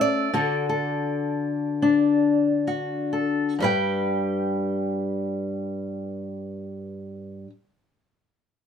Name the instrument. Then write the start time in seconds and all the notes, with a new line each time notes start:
steel-string acoustic guitar
Already playing: A3 C#4 A4
0.01 D5
0.34 D3 F#4 A4
0.69 A4
1.82 D4
2.67 F#4
3.13 A4
3.59 G2 G3 B4
3.64 G5